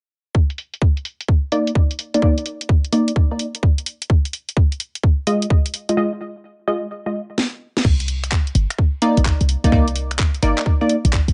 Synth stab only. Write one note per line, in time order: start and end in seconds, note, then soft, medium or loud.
1.52 1.71 A#3 medium
1.52 1.71 D#4 medium
1.52 1.71 D5 loud
2.14 2.21 A#3 medium
2.14 2.21 D#4 medium
2.14 2.21 D5 medium
2.22 2.36 A#3 medium
2.22 2.36 D#4 medium
2.22 2.36 D5 loud
2.93 3.12 A#3 medium
2.93 3.12 D#4 medium
2.93 3.12 D5 loud
3.31 3.47 A#3 medium
3.31 3.46 D#4 medium
3.31 3.46 D5 medium
5.27 5.46 G#3 medium
5.27 5.46 F4 medium
5.27 5.46 D#5 loud
5.89 5.96 G#3 medium
5.89 5.96 F4 medium
5.89 5.96 D#5 medium
5.97 6.11 G#3 loud
5.97 6.11 F4 medium
5.97 6.11 D#5 loud
6.68 6.87 G#3 loud
6.68 6.87 F4 medium
6.68 6.87 D#5 loud
7.06 7.21 G#3 medium
7.06 7.21 F4 medium
7.06 7.21 D#5 medium
9.02 9.21 A#3 medium
9.02 9.21 D#4 medium
9.02 9.21 D5 loud
9.64 9.71 A#3 medium
9.64 9.71 D#4 medium
9.64 9.71 D5 medium
9.72 9.86 A#3 loud
9.72 9.86 D#4 medium
9.72 9.86 D5 loud
10.43 10.62 A#3 loud
10.43 10.62 D#4 medium
10.43 10.62 D5 loud
10.81 10.96 A#3 medium
10.81 10.96 D#4 medium
10.81 10.96 D5 medium